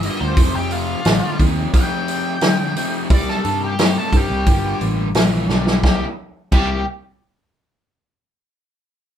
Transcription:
0.03 overdriven electric guitar G2 D3, tonewheel organ B3 F4 A#4, lead electric guitar D#5, open hi-hat
0.20 picked electric bass D2, lead electric guitar C5
0.37 picked electric bass F1, overdriven electric guitar F2 C3, tonewheel organ A3 D#4 G#4, kick, open hi-hat
0.54 picked electric bass F1, lead electric guitar G4
0.71 tonewheel organ A3 D#4 G#4, lead electric guitar F4, open hi-hat
1.05 picked electric bass A1, overdriven electric guitar F2 D3, tonewheel organ A3 D#4 G#4, snare, open hi-hat
1.39 picked electric bass D#2, overdriven electric guitar F2 C3, tonewheel organ A3 D#4 G#4, kick, open hi-hat
1.72 overdriven electric guitar F2 C3, tonewheel organ A3 D#4 G#4, kick, open hi-hat
1.76 lead electric guitar G5
2.07 tonewheel organ A3 D#4 G#4, open hi-hat
2.41 overdriven electric guitar F2 D3, tonewheel organ A3 D#4 G#4, snare, open hi-hat
2.76 overdriven electric guitar F2 C3, tonewheel organ A3 D#4 G#4, open hi-hat
3.10 picked electric bass C2, overdriven electric guitar C3 G3, tonewheel organ A#3 D#4 E4, lead electric guitar D5, kick, open hi-hat
3.29 lead electric guitar A4, snare
3.45 picked electric bass G2, open hi-hat
3.49 tonewheel organ A#3 D#4 E4
3.64 lead electric guitar G4
3.79 overdriven electric guitar C3 A3, tonewheel organ A#3 D#4 E4, snare, open hi-hat
3.99 lead electric guitar A4
4.12 picked electric bass G2, overdriven electric guitar C3 G3, tonewheel organ A#3 D#4 E4, lead electric guitar G4, kick, open hi-hat
4.30 picked electric bass C2
4.46 picked electric bass G1, overdriven electric guitar G2 D3, tonewheel organ A#3 B3 F4, kick, open hi-hat
4.80 picked electric bass A1, tonewheel organ A#3 B3 G4, open hi-hat
5.15 picked electric bass A#1, overdriven electric guitar G2 E3, tonewheel organ A#3 B3 F4, snare, open hi-hat
5.49 picked electric bass B1, overdriven electric guitar G2 D3, tonewheel organ A#3 B3 F4, snare
5.67 snare
5.83 picked electric bass C2, overdriven electric guitar C3 G3 A#3 E4 G4, tonewheel organ A#3 D#4 E4, lead electric guitar G4, kick, snare
6.52 picked electric bass C2, overdriven electric guitar C3 G3 A#3 E4 G4, lead electric guitar G4, kick, crash

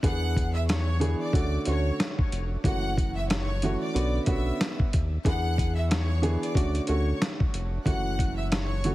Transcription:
0.03 analog synth bass E2, upright piano E3 B3 D4 G#4, violin section F#5 F#6, kick, closed hi-hat
0.36 kick, closed hi-hat
0.54 violin section E5 E6
0.68 violin section C#5 C#6, cross-stick, snare, closed hi-hat
1.00 upright piano E3 B3 D4 G#4, closed hi-hat
1.20 violin section D5 D6
1.33 analog synth bass D2, upright piano D3 A3 C#4 F#4, kick, closed hi-hat
1.65 analog synth bass D2, upright piano D3 A3 C#4 F#4, violin section C#5 C#6, closed hi-hat
2.00 cross-stick, snare, closed hi-hat
2.19 kick
2.32 analog synth bass F1, closed hi-hat
2.64 analog synth bass F#1, upright piano E3 A3 C#4 F#4, violin section F#5 F#6, kick, closed hi-hat
2.97 kick, closed hi-hat
3.16 violin section E5 E6
3.29 violin section C#5 C#6, cross-stick, snare, closed hi-hat
3.62 upright piano E3 A3 C#4 F#4, closed hi-hat
3.81 violin section D5 D6
3.94 analog synth bass B1, upright piano D3 B3 C#4 F#4, closed hi-hat
4.26 analog synth bass B1, upright piano D3 B3 C#4 F#4, violin section E5 E6, kick, closed hi-hat
4.61 cross-stick, snare, closed hi-hat
4.79 kick
4.93 analog synth bass D#2, kick, closed hi-hat
5.25 analog synth bass E2, upright piano E3 B3 D4 G#4, violin section F#5 F#6, kick, closed hi-hat
5.58 kick, closed hi-hat
5.75 violin section E5 E6
5.90 violin section C#5 C#6, cross-stick, snare, closed hi-hat
6.22 upright piano E3 B3 D4 G#4, closed hi-hat
6.41 violin section D5 D6, closed hi-hat
6.55 analog synth bass D2, upright piano D3 A3 C#4 F#4, kick, closed hi-hat
6.75 closed hi-hat
6.87 analog synth bass D2, upright piano D3 A3 C#4 F#4, violin section C#5 C#6, closed hi-hat
7.22 cross-stick, snare, closed hi-hat
7.40 kick
7.54 analog synth bass F1, closed hi-hat
7.86 analog synth bass F#1, upright piano E3 A3 C#4 F#4, violin section F#5 F#6, kick, closed hi-hat
8.19 kick, closed hi-hat
8.37 violin section E5 E6
8.51 violin section C#5 C#6, cross-stick, snare, closed hi-hat
8.84 upright piano E3 A3 C#4 F#4, closed hi-hat

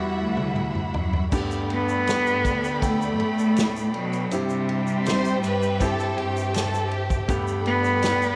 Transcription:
Already playing: cello G3, grand piano G3 E4 F#4 G4, string section E4 E5 F#5 B5
0.18 cello section D2
0.37 high tom
0.56 mid tom
0.75 mid tom
0.94 cello section F#2, floor tom
1.13 floor tom
1.31 cello section G2, grand piano G2 D3 A3 B3 G4, string section A4 D5 G5 B5, kick, crash, shaker
1.51 shaker
1.70 cello B3, ride
1.89 shaker
2.07 snare, ride, shaker
2.27 shaker
2.45 cello section D2, kick, ride, shaker
2.64 shaker
2.82 grand piano A3 B3 G5, kick, ride, shaker
2.86 cello A3
3.02 shaker
3.20 cello section A2, ride
3.39 shaker
3.57 snare, ride, shaker
3.76 shaker
3.94 cello section B2, cello F#3, ride
4.13 ride, shaker
4.31 grand piano G2 C4 E4 G4, cello section C3, cello G3, string section C4 G4 E5 G5, ride, shaker
4.50 shaker
4.69 ride
4.87 shaker
5.06 violin section C5, snare, ride, shaker
5.25 shaker
5.44 cello section G2, violin section B4, ride, shaker
5.62 shaker
5.80 grand piano C4 E4 G4, violin section A4, kick, ride, shaker
6.00 shaker
6.18 cello section G2, violin section G4, ride
6.37 shaker
6.54 violin section A4, snare, ride, shaker
6.74 shaker
6.91 violin section G4, ride
7.10 kick, shaker
7.28 cello section G2, grand piano G2 D3 A3 B3 G4, string section A4 D5 G5 B5, kick, ride, shaker
7.47 shaker
7.66 cello B3, ride
7.84 shaker
8.02 snare, ride, shaker
8.22 shaker

